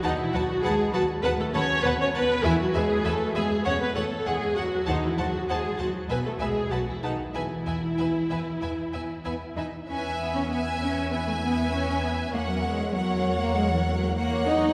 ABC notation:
X:1
M:4/4
L:1/16
Q:1/4=98
K:E
V:1 name="Violin section"
a2 a2 a2 a2 a2 a2 a2 a2 | g2 g2 g2 g2 f2 f2 f2 f2 | a2 a2 a2 a2 g2 g2 a2 a2 | g2 g2 g2 g2 g2 g2 g2 g2 |
g4 g4 g8 | f4 f8 f4 |]
V:2 name="Violin section"
[Bf]2 [Bf]2 [Bf]2 [Bf]2 [Bf]2 [Bf]2 [Bf]2 [Bf]2 | [Be]2 [Be]2 [Be]2 [Be]2 [cf]2 [cf]2 [cf]2 [cf]2 | [^Bf]2 [Bf]2 [Bf]2 [Bf]2 [=Be]2 [Be]2 [Bf]2 [Bf]2 | [Be]2 [Be]2 [Be]2 [Be]2 [Be]2 [Be]2 [Be]2 [Be]2 |
e4 e4 e8 | c4 c8 c4 |]
V:3 name="Viola section"
D E F2 G2 F2 B A c2 B c B2 | E F G2 A2 G2 c B A2 G2 F2 | D E F2 G2 F2 B A G2 F E D2 | E12- E2 z2 |
B4 B4 B8 | ^A4 A8 A2 G2 |]
V:4 name="Cello section"
D, E, F,2 G,2 F,2 B, A, C2 B, C B,2 | E, F, G,2 A,2 G,2 C B, A,2 G,2 F,2 | D, E, F,2 G,2 F,2 B, A, G,2 F, E, D,2 | E,12 B,2 D2 |
C2 B, C B,2 C2 B, A, B,2 C2 B,2 | ^A, F, G,2 F,3 A, G, E, F,2 A,2 D2 |]
V:5 name="Double bass section" clef=bass
D,,2 D,,2 D,,2 D,,2 D,,2 D,,2 D,,2 D,,2 | E,,2 E,,2 E,,2 E,,2 E,,2 E,,2 E,,2 E,,2 | D,,2 D,,2 D,,2 D,,2 B,,,2 B,,,2 B,,,2 B,,,2 | E,,2 E,,2 E,,2 E,,2 E,,2 E,,2 E,,2 E,,2 |
E,,16 | E,,16 |]